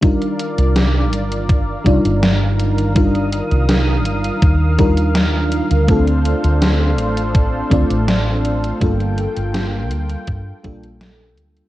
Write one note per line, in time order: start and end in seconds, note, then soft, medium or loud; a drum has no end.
0.01 5.84 D#3 medium
0.01 1.81 G3 medium
0.01 1.81 D4 medium
0.01 1.82 D#4 medium
0.01 1.82 F4 medium
0.01 5.84 A#4 medium
0.01 1.83 A#4 medium
0.01 2.93 D5 medium
0.01 8.77 F5 medium
0.01 kick loud
0.01 closed hi-hat medium
0.22 closed hi-hat soft
0.40 closed hi-hat medium
0.58 1.13 C2 medium
0.58 closed hi-hat medium
0.76 snare loud
0.76 closed hi-hat medium
1.13 1.75 G1 medium
1.13 closed hi-hat medium
1.32 closed hi-hat soft
1.49 kick loud
1.49 closed hi-hat medium
1.84 1.98 C2 medium
1.84 2.91 G3 medium
1.84 2.91 D4 medium
1.84 2.91 D#4 medium
1.84 2.92 F4 medium
1.84 2.92 D5 medium
1.84 kick loud
1.84 closed hi-hat medium
2.05 3.40 G1 medium
2.05 closed hi-hat medium
2.23 snare loud
2.23 closed hi-hat medium
2.59 closed hi-hat medium
2.78 closed hi-hat medium
2.94 4.74 G3 medium
2.94 4.74 D4 medium
2.94 4.74 D#4 medium
2.94 4.75 F4 medium
2.94 4.75 A#4 medium
2.94 5.86 D#6 medium
2.94 kick loud
2.94 closed hi-hat medium
3.15 closed hi-hat soft
3.32 closed hi-hat medium
3.51 4.06 C2 medium
3.51 closed hi-hat medium
3.69 snare loud
3.69 closed hi-hat medium
4.05 4.29 G1 medium
4.05 closed hi-hat medium
4.24 closed hi-hat medium
4.42 5.59 D#2 medium
4.42 kick loud
4.42 closed hi-hat medium
4.78 4.97 G3 medium
4.78 4.98 D4 medium
4.78 4.98 D#4 medium
4.78 4.98 F4 medium
4.78 4.98 A#4 loud
4.78 kick loud
4.78 closed hi-hat medium
4.97 closed hi-hat medium
5.15 snare loud
5.15 closed hi-hat medium
5.52 closed hi-hat medium
5.71 6.33 D2 medium
5.71 closed hi-hat medium
5.87 7.67 A3 medium
5.87 7.67 C4 medium
5.87 7.67 D4 medium
5.87 8.79 D4 medium
5.87 7.68 F4 medium
5.87 11.69 A4 medium
5.87 7.68 A4 medium
5.87 8.79 C5 medium
5.87 kick loud
5.87 closed hi-hat medium
6.07 closed hi-hat soft
6.25 closed hi-hat medium
6.44 6.99 D2 loud
6.44 closed hi-hat medium
6.62 snare loud
6.62 closed hi-hat medium
6.98 7.61 A1 medium
6.98 closed hi-hat medium
7.17 closed hi-hat medium
7.35 kick loud
7.35 closed hi-hat medium
7.70 7.83 D2 medium
7.70 8.76 A3 medium
7.70 8.77 C4 medium
7.70 8.77 D4 medium
7.70 8.78 F4 medium
7.70 8.78 D5 loud
7.70 kick loud
7.70 closed hi-hat medium
7.90 8.71 A1 medium
7.90 closed hi-hat medium
8.08 snare loud
8.08 closed hi-hat medium
8.45 closed hi-hat medium
8.64 closed hi-hat medium
8.80 9.25 G1 loud
8.80 10.59 G3 medium
8.80 10.60 A#3 medium
8.80 11.69 A#3 medium
8.80 10.60 D4 medium
8.80 11.69 F4 medium
8.80 10.60 F4 medium
8.80 10.61 A4 medium
8.80 11.69 G5 medium
8.80 kick loud
8.80 closed hi-hat medium
9.00 closed hi-hat soft
9.18 closed hi-hat medium
9.36 9.92 G1 medium
9.36 closed hi-hat medium
9.54 snare loud
9.54 closed hi-hat medium
9.91 10.14 D2 medium
9.91 closed hi-hat medium
10.10 closed hi-hat medium
10.27 10.51 G2 medium
10.27 kick loud
10.27 closed hi-hat medium
10.63 11.38 A#1 medium
10.63 10.83 G3 medium
10.63 10.83 A#3 medium
10.63 10.83 D4 medium
10.63 10.83 F4 medium
10.63 10.83 A4 loud
10.63 kick loud
10.63 closed hi-hat medium
10.83 closed hi-hat medium
11.01 snare loud
11.01 closed hi-hat medium
11.38 11.61 D2 medium
11.38 closed hi-hat medium
11.57 closed hi-hat medium